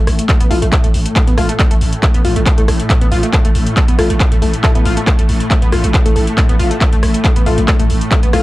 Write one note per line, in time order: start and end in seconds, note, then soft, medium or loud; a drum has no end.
0.00 8.43 A2 medium
0.00 8.43 A3 medium
0.07 0.18 A1 loud
0.07 cross-stick medium
0.07 open hi-hat loud
0.19 closed hi-hat medium
0.29 0.36 A3 medium
0.29 kick loud
0.29 clap loud
0.29 closed hi-hat medium
0.40 0.50 A1 medium
0.40 0.47 B3 loud
0.40 closed hi-hat medium
0.50 0.61 A1 loud
0.50 0.67 A3 medium
0.50 0.67 E4 medium
0.50 0.61 F4 loud
0.50 0.67 A4 loud
0.50 open hi-hat loud
0.62 0.72 A1 medium
0.62 0.66 A3 loud
0.62 closed hi-hat medium
0.72 0.79 A3 medium
0.72 kick loud
0.72 cross-stick medium
0.72 clap loud
0.72 closed hi-hat medium
0.84 0.93 A1 medium
0.84 0.88 A3 loud
0.84 closed hi-hat medium
0.94 1.05 A1 loud
0.94 open hi-hat loud
1.06 closed hi-hat medium
1.16 1.23 A3 medium
1.16 kick loud
1.16 clap loud
1.16 closed hi-hat medium
1.27 1.37 A1 medium
1.27 1.34 B3 loud
1.27 closed hi-hat medium
1.37 1.49 A1 loud
1.37 1.48 A3 medium
1.37 1.48 E4 medium
1.37 1.48 F4 loud
1.37 1.48 A4 medium
1.37 cross-stick medium
1.37 open hi-hat loud
1.49 1.53 A3 loud
1.49 closed hi-hat medium
1.59 1.66 A3 medium
1.59 kick loud
1.59 clap loud
1.59 closed hi-hat medium
1.71 1.80 A1 medium
1.71 1.74 A3 loud
1.71 closed hi-hat medium
1.81 1.92 A1 loud
1.81 open hi-hat loud
1.93 closed hi-hat medium
2.03 2.10 A3 medium
2.03 kick loud
2.03 cross-stick medium
2.03 clap loud
2.03 closed hi-hat medium
2.14 2.24 A1 medium
2.14 2.21 B3 loud
2.14 closed hi-hat medium
2.25 2.35 A1 medium
2.25 2.35 F4 loud
2.25 open hi-hat loud
2.36 2.46 A1 medium
2.36 2.40 A3 loud
2.36 closed hi-hat medium
2.46 2.53 A3 medium
2.46 kick loud
2.46 clap loud
2.46 closed hi-hat medium
2.58 2.67 A1 medium
2.58 2.62 A3 loud
2.58 2.67 A3 medium
2.58 2.67 E4 medium
2.58 2.67 A4 medium
2.58 closed hi-hat medium
2.68 2.79 A1 loud
2.68 2.78 A3 medium
2.68 2.78 E4 medium
2.68 2.78 A4 medium
2.68 cross-stick medium
2.68 open hi-hat loud
2.80 closed hi-hat medium
2.90 2.97 A3 medium
2.90 kick loud
2.90 clap loud
2.90 closed hi-hat medium
3.01 3.11 A1 medium
3.01 3.08 B3 loud
3.01 closed hi-hat medium
3.11 3.23 A1 loud
3.11 3.22 F4 loud
3.11 open hi-hat loud
3.23 3.27 A3 loud
3.23 closed hi-hat medium
3.33 3.40 A3 medium
3.33 kick loud
3.33 cross-stick medium
3.33 clap loud
3.33 closed hi-hat medium
3.45 3.54 A1 medium
3.45 3.49 A3 loud
3.45 closed hi-hat medium
3.55 3.66 A1 loud
3.55 open hi-hat loud
3.67 closed hi-hat medium
3.77 3.84 A3 medium
3.77 kick loud
3.77 clap loud
3.77 closed hi-hat medium
3.88 3.98 A1 medium
3.88 3.95 B3 loud
3.88 closed hi-hat medium
3.98 4.09 A1 loud
3.98 4.15 A3 medium
3.98 4.15 E4 medium
3.98 4.09 F4 loud
3.98 4.15 A4 loud
3.98 cross-stick medium
3.98 open hi-hat loud
4.10 4.20 A1 medium
4.10 4.14 A3 loud
4.10 closed hi-hat medium
4.20 4.27 A3 medium
4.20 kick loud
4.20 clap loud
4.20 closed hi-hat medium
4.32 4.41 A1 medium
4.32 4.35 A3 loud
4.32 closed hi-hat medium
4.42 4.53 A1 loud
4.42 4.52 A3 medium
4.42 4.52 E4 medium
4.42 4.52 A4 medium
4.42 open hi-hat loud
4.53 closed hi-hat medium
4.64 4.73 A3 loud
4.64 4.71 A3 medium
4.64 4.73 E4 medium
4.64 4.73 A4 loud
4.64 kick loud
4.64 cross-stick medium
4.64 clap loud
4.64 closed hi-hat medium
4.75 4.85 A1 medium
4.75 4.85 A3 medium
4.75 4.81 B3 loud
4.75 4.85 E4 medium
4.75 4.85 A4 medium
4.75 closed hi-hat medium
4.85 4.97 A1 loud
4.85 4.96 F4 loud
4.85 open hi-hat loud
4.97 5.01 A3 loud
4.97 closed hi-hat medium
5.07 5.14 A3 medium
5.07 kick loud
5.07 cross-stick loud
5.07 clap loud
5.07 closed hi-hat medium
5.18 5.28 A1 medium
5.18 5.22 A3 loud
5.18 closed hi-hat medium
5.29 5.40 A1 loud
5.29 open hi-hat loud
5.40 closed hi-hat medium
5.51 5.58 A3 medium
5.51 kick loud
5.51 clap loud
5.51 closed hi-hat medium
5.62 5.72 A1 medium
5.62 5.68 B3 loud
5.62 closed hi-hat medium
5.72 5.83 A1 loud
5.72 5.83 F4 loud
5.72 cross-stick medium
5.72 open hi-hat loud
5.84 5.94 A1 medium
5.84 5.88 A3 loud
5.84 closed hi-hat medium
5.94 6.01 A3 medium
5.94 kick loud
5.94 clap loud
5.94 closed hi-hat medium
6.05 6.15 A1 medium
6.05 6.14 A3 medium
6.05 6.09 A3 loud
6.05 6.14 E4 medium
6.05 6.14 A4 medium
6.05 closed hi-hat medium
6.16 6.27 A1 loud
6.16 6.26 A3 medium
6.16 6.26 E4 medium
6.16 6.26 A4 medium
6.16 open hi-hat loud
6.27 closed hi-hat medium
6.37 6.45 A3 medium
6.37 kick loud
6.37 cross-stick medium
6.37 clap loud
6.37 closed hi-hat medium
6.49 6.59 A1 medium
6.49 6.55 B3 loud
6.49 closed hi-hat medium
6.59 6.71 A1 loud
6.59 6.70 F4 loud
6.59 open hi-hat loud
6.71 6.75 A3 loud
6.71 closed hi-hat medium
6.81 6.88 A3 medium
6.81 kick loud
6.81 clap loud
6.81 closed hi-hat medium
6.92 7.02 A1 medium
6.92 6.96 A3 loud
6.92 closed hi-hat medium
7.03 7.14 A1 loud
7.03 cross-stick loud
7.03 open hi-hat loud
7.14 closed hi-hat medium
7.24 7.32 A3 medium
7.24 kick loud
7.24 clap loud
7.24 closed hi-hat medium
7.36 7.46 A1 medium
7.36 7.42 B3 loud
7.36 closed hi-hat medium
7.46 7.57 A1 loud
7.46 7.62 A3 medium
7.46 7.62 E4 medium
7.46 7.57 F4 loud
7.46 7.62 A4 loud
7.46 open hi-hat loud
7.58 7.68 A1 medium
7.58 7.62 A3 loud
7.58 closed hi-hat medium
7.68 7.75 A3 medium
7.68 kick loud
7.68 cross-stick loud
7.68 clap loud
7.68 closed hi-hat medium
7.79 7.89 A1 medium
7.79 7.83 A3 loud
7.79 closed hi-hat medium
7.90 8.01 A1 loud
7.90 open hi-hat loud
8.01 closed hi-hat medium
8.11 8.18 A3 medium
8.11 kick loud
8.11 clap loud
8.11 closed hi-hat medium
8.23 8.33 A1 medium
8.23 8.29 B3 loud
8.23 closed hi-hat medium
8.33 8.43 A1 loud
8.33 8.43 A3 medium
8.33 8.43 E4 medium
8.33 8.43 F4 loud
8.33 8.43 A4 medium
8.33 cross-stick loud
8.33 open hi-hat loud